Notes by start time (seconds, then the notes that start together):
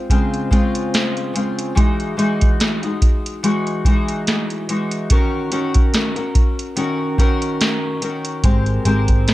Already playing: C4
0.10 C#3 G#3 C4 F4, kick, closed hi-hat
0.34 closed hi-hat
0.51 C#3 G#3 C4 F4, kick, closed hi-hat
0.75 closed hi-hat
0.94 snare, closed hi-hat
1.17 closed hi-hat
1.34 C#3 G#3 C4 F4, closed hi-hat
1.59 closed hi-hat
1.75 E3 G#3 D#4 F#4, kick, closed hi-hat
2.00 closed hi-hat
2.17 E3 G#3 D#4 F#4, closed hi-hat
2.41 kick, closed hi-hat
2.60 snare, closed hi-hat
2.83 G#3 D#4 F#4, closed hi-hat
3.02 kick, closed hi-hat
3.26 closed hi-hat
3.43 E3 G#3 D#4 F#4, closed hi-hat
3.67 closed hi-hat
3.85 E3 G#3 D#4 F#4, kick, closed hi-hat
4.08 closed hi-hat
4.27 snare, closed hi-hat
4.50 closed hi-hat
4.69 E3 G#3 D#4 F#4, closed hi-hat
4.91 closed hi-hat
5.10 D#3 C#4 F#4 A#4, kick, closed hi-hat
5.51 D#3 C#4 F#4 A#4, closed hi-hat
5.74 kick, closed hi-hat
5.94 snare, closed hi-hat
6.16 C#4 F#4 A#4, closed hi-hat
6.35 kick, closed hi-hat
6.59 closed hi-hat
6.76 D#3 C#4 F#4 A#4, closed hi-hat
7.18 D#3 C#4 F#4 A#4, kick, closed hi-hat
7.42 closed hi-hat
7.61 snare, closed hi-hat
8.01 D#3 C#4 F#4 A#4, closed hi-hat
8.25 closed hi-hat
8.43 G#1 G#3 C4 G4 A#4, kick, closed hi-hat
8.66 closed hi-hat
8.85 G#1 G#3 C4 G4 A#4, closed hi-hat
9.08 kick, closed hi-hat
9.28 snare, closed hi-hat